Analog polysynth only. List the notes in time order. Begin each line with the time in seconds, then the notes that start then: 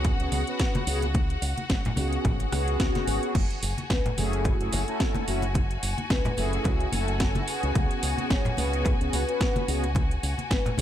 Already playing: B3 C#4 F#4 G#4
0.19 B3 C#4 F#4 G#4
0.47 B3 C#4 F#4 B4
0.87 B3 C#4 F#4 G#4
1.97 B3 C#4 F#4 G#4
2.51 B3 C#4 F#4 G#4
4.17 A3 C#4 E4 G#4
4.60 A3 C#4 E4 G#4
4.87 A3 C#4 E4 A4
5.27 A3 C#4 E4 F#4
6.37 A3 C#4 E4 G#4
6.92 A3 C#4 E4 A4
7.47 B3 C#4 F#4 G#4
8.57 B3 C#4 F#4 G#4
9.00 B3 C#4 F#4 G#4
9.28 B3 C#4 F#4 B4
9.67 B3 C#4 F#4 G#4
10.78 B3 C#4 F#4